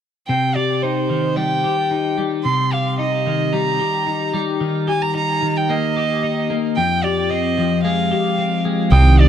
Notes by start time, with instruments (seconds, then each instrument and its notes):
0.28 clean electric guitar C3, violin G5
0.55 clean electric guitar G4, violin D5
0.82 clean electric guitar D#4, violin C5
1.10 clean electric guitar D#3
1.36 clean electric guitar G3, violin G5
1.64 clean electric guitar G4
1.91 clean electric guitar D#4
2.18 clean electric guitar G3
2.44 clean electric guitar C3, violin C6
2.72 clean electric guitar G4, violin F5
2.99 clean electric guitar D#4, violin D#5
3.26 clean electric guitar D#3
3.53 clean electric guitar G3, violin A#5
3.80 clean electric guitar G4
4.07 clean electric guitar D#4
4.34 clean electric guitar G3
4.61 clean electric guitar D#3
4.88 clean electric guitar G4, violin G#5
5.02 violin A#5
5.15 clean electric guitar D#4, violin A#5
5.42 clean electric guitar D#3
5.57 violin G5
5.69 clean electric guitar A#3, violin D#5
5.97 clean electric guitar G4
6.23 clean electric guitar D#4
6.50 clean electric guitar A#3
6.77 clean electric guitar F2, violin G5
7.03 clean electric guitar G4, violin D5
7.30 clean electric guitar C4, violin D#5
7.58 clean electric guitar F3
7.84 clean electric guitar G#3, violin F5
8.11 clean electric guitar G4
8.38 clean electric guitar C4
8.65 clean electric guitar G#3
8.92 fingered electric bass C2, clean electric guitar C3, ambient pad D#3 C4 D#4, violin G5, glockenspiel D#6
9.19 clean electric guitar G4, violin D5